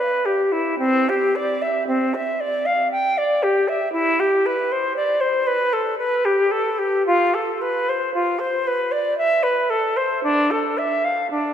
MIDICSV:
0, 0, Header, 1, 2, 480
1, 0, Start_track
1, 0, Tempo, 1073345
1, 349, Time_signature, 3, 2, 24, 8
1, 828, Tempo, 1034483
1, 2748, Tempo, 1083032
1, 3708, Tempo, 1047120
1, 5257, End_track
2, 0, Start_track
2, 0, Title_t, "Flute"
2, 0, Program_c, 0, 73
2, 0, Note_on_c, 0, 71, 69
2, 111, Note_on_c, 0, 67, 64
2, 118, Note_off_c, 0, 71, 0
2, 230, Note_on_c, 0, 64, 63
2, 237, Note_off_c, 0, 67, 0
2, 346, Note_off_c, 0, 64, 0
2, 349, Note_on_c, 0, 60, 85
2, 485, Note_on_c, 0, 67, 66
2, 492, Note_off_c, 0, 60, 0
2, 604, Note_on_c, 0, 74, 70
2, 610, Note_off_c, 0, 67, 0
2, 721, Note_on_c, 0, 76, 64
2, 728, Note_off_c, 0, 74, 0
2, 832, Note_off_c, 0, 76, 0
2, 835, Note_on_c, 0, 60, 65
2, 962, Note_on_c, 0, 76, 64
2, 969, Note_off_c, 0, 60, 0
2, 1081, Note_on_c, 0, 74, 68
2, 1088, Note_off_c, 0, 76, 0
2, 1199, Note_on_c, 0, 77, 72
2, 1206, Note_off_c, 0, 74, 0
2, 1314, Note_off_c, 0, 77, 0
2, 1319, Note_on_c, 0, 79, 85
2, 1440, Note_on_c, 0, 74, 76
2, 1447, Note_off_c, 0, 79, 0
2, 1557, Note_on_c, 0, 67, 74
2, 1564, Note_off_c, 0, 74, 0
2, 1675, Note_on_c, 0, 76, 65
2, 1682, Note_off_c, 0, 67, 0
2, 1784, Note_off_c, 0, 76, 0
2, 1786, Note_on_c, 0, 64, 83
2, 1914, Note_on_c, 0, 67, 72
2, 1921, Note_off_c, 0, 64, 0
2, 2035, Note_on_c, 0, 71, 73
2, 2042, Note_off_c, 0, 67, 0
2, 2155, Note_on_c, 0, 72, 71
2, 2162, Note_off_c, 0, 71, 0
2, 2266, Note_off_c, 0, 72, 0
2, 2269, Note_on_c, 0, 74, 76
2, 2381, Note_on_c, 0, 72, 67
2, 2388, Note_off_c, 0, 74, 0
2, 2504, Note_on_c, 0, 71, 66
2, 2511, Note_off_c, 0, 72, 0
2, 2625, Note_on_c, 0, 69, 67
2, 2632, Note_off_c, 0, 71, 0
2, 2739, Note_off_c, 0, 69, 0
2, 2742, Note_on_c, 0, 71, 76
2, 2861, Note_on_c, 0, 67, 73
2, 2868, Note_off_c, 0, 71, 0
2, 2978, Note_on_c, 0, 69, 69
2, 2984, Note_off_c, 0, 67, 0
2, 3098, Note_on_c, 0, 67, 70
2, 3104, Note_off_c, 0, 69, 0
2, 3219, Note_off_c, 0, 67, 0
2, 3222, Note_on_c, 0, 65, 93
2, 3345, Note_on_c, 0, 69, 71
2, 3352, Note_off_c, 0, 65, 0
2, 3466, Note_on_c, 0, 71, 67
2, 3473, Note_off_c, 0, 69, 0
2, 3588, Note_on_c, 0, 72, 74
2, 3595, Note_off_c, 0, 71, 0
2, 3696, Note_off_c, 0, 72, 0
2, 3699, Note_on_c, 0, 65, 74
2, 3814, Note_on_c, 0, 72, 67
2, 3821, Note_off_c, 0, 65, 0
2, 3941, Note_on_c, 0, 71, 70
2, 3948, Note_off_c, 0, 72, 0
2, 4054, Note_on_c, 0, 74, 72
2, 4061, Note_off_c, 0, 71, 0
2, 4170, Note_off_c, 0, 74, 0
2, 4173, Note_on_c, 0, 76, 84
2, 4290, Note_on_c, 0, 71, 75
2, 4297, Note_off_c, 0, 76, 0
2, 4413, Note_on_c, 0, 69, 77
2, 4420, Note_off_c, 0, 71, 0
2, 4535, Note_on_c, 0, 72, 69
2, 4542, Note_off_c, 0, 69, 0
2, 4655, Note_off_c, 0, 72, 0
2, 4658, Note_on_c, 0, 62, 93
2, 4784, Note_on_c, 0, 69, 72
2, 4791, Note_off_c, 0, 62, 0
2, 4908, Note_on_c, 0, 76, 72
2, 4915, Note_off_c, 0, 69, 0
2, 5029, Note_on_c, 0, 77, 64
2, 5036, Note_off_c, 0, 76, 0
2, 5147, Note_off_c, 0, 77, 0
2, 5149, Note_on_c, 0, 62, 63
2, 5257, Note_off_c, 0, 62, 0
2, 5257, End_track
0, 0, End_of_file